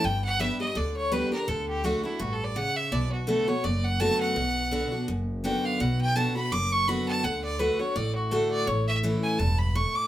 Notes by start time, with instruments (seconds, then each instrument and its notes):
0.04 upright bass G1, steel-string acoustic guitar G2, fiddle G5
0.24 fiddle F#5
0.40 steel-string acoustic guitar G3 B3 D4 G4, fiddle E5
0.60 steel-string acoustic guitar D4 G4, fiddle D#5
0.75 upright bass D2, steel-string acoustic guitar D3, fiddle D5
0.97 fiddle C#5
1.12 steel-string acoustic guitar G3 B3 D4 G4, fiddle B4
1.32 steel-string acoustic guitar D4 G4, fiddle A#4
1.48 upright bass D2, steel-string acoustic guitar D3, fiddle A4
1.68 fiddle G4
1.84 steel-string acoustic guitar D3 A3 D4 F#4, fiddle F#4
2.04 steel-string acoustic guitar D4 F#4, fiddle E4
2.19 upright bass A1, steel-string acoustic guitar G2, fiddle F#4
2.33 fiddle A4
2.44 fiddle D5
2.56 steel-string acoustic guitar C#3, fiddle F#5
2.76 fiddle E5
2.92 upright bass B1, steel-string acoustic guitar B2, fiddle D5
3.12 fiddle F#4
3.27 steel-string acoustic guitar D3 A3 B3 F#4, fiddle A4
3.48 steel-string acoustic guitar B3 F#4, fiddle C#5
3.64 upright bass F#1, steel-string acoustic guitar F#2, fiddle D5
3.85 fiddle F#5
4.00 steel-string acoustic guitar D3 A3 B3 F#4, fiddle A5
4.21 fiddle F#5
4.36 upright bass B1, steel-string acoustic guitar B2
4.71 steel-string acoustic guitar D3 B3 D4 F#4
4.92 steel-string acoustic guitar D4 F#4
5.08 upright bass F#1, steel-string acoustic guitar F#2
5.44 steel-string acoustic guitar D3 B3 D4 F#4, fiddle G5
5.65 fiddle F5
5.80 upright bass B1, steel-string acoustic guitar B2, fiddle F#5
6.01 fiddle G5
6.16 steel-string acoustic guitar D3 B3 D4 F#4, fiddle A5
6.36 steel-string acoustic guitar D4 F#4, fiddle B5
6.52 upright bass F#1, steel-string acoustic guitar F#2, fiddle D6
6.72 fiddle C#6
6.88 steel-string acoustic guitar D3 B3 D4 F#4, fiddle B5
7.08 fiddle A5
7.24 upright bass D2, steel-string acoustic guitar D3, fiddle F#5
7.44 fiddle D5
7.59 steel-string acoustic guitar D3 A3 D4 F#4, fiddle B4
7.79 steel-string acoustic guitar D4 F#4, fiddle C#5
7.95 upright bass A1, steel-string acoustic guitar A2, fiddle D5
8.15 fiddle F#4
8.31 steel-string acoustic guitar D3 A3 D4 F#4, fiddle A4
8.51 fiddle D5
8.67 upright bass A1, steel-string acoustic guitar A2, fiddle C#5
8.87 fiddle E5
9.03 steel-string acoustic guitar E3 A3 C#4 E4
9.23 fiddle G#5
9.38 upright bass E1, steel-string acoustic guitar G2, fiddle A5
9.59 fiddle B5
9.75 steel-string acoustic guitar A2, fiddle C#6
9.95 fiddle D6